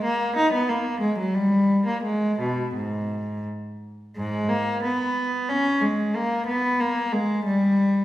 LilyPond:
\new Staff \with { instrumentName = "Cello" } { \time 3/4 \key gis \minor \tempo 4 = 91 ais8 dis'16 b16 ais8 gis16 fis16 g8. ais16 | gis8 b,8 gis,4 r4 | <gis, gis>8 ais8 b4 cis'8 gis8 | ais8 b8 ais8 gis8 g4 | }